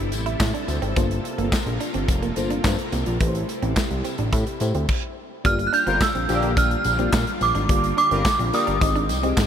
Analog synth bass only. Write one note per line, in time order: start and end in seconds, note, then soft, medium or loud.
0.00 0.14 G1 loud
0.12 0.36 A1 medium
0.40 0.52 A2 loud
0.68 0.80 D2 medium
0.82 0.94 G#1 medium
0.96 1.20 G1 loud
1.38 1.50 G1 medium
1.66 1.78 A#1 medium
1.95 2.06 G1 loud
2.08 2.32 F1 loud
2.37 2.60 G1 medium
2.64 2.76 G2 loud
2.93 3.04 C2 medium
3.07 3.18 A#1 medium
3.21 3.44 A1 loud
3.63 3.74 A1 loud
3.91 4.02 C2 medium
4.19 4.31 A1 loud
4.33 4.44 A2 loud
4.61 4.73 A2 medium
4.75 4.87 D2 medium
5.45 5.68 G1 loud
5.87 5.99 G1 loud
6.15 6.27 A#1 medium
6.29 6.76 A#1 loud
6.85 7.09 A#1 medium
7.13 7.25 A#2 loud
7.41 7.53 A#1 medium
7.55 7.67 G#1 medium
7.69 7.93 G1 loud
8.11 8.23 G1 loud
8.39 8.51 A#1 loud
8.68 8.79 G1 loud
8.81 9.11 G#1 loud
9.10 9.33 C2 loud
9.37 9.47 G#2 loud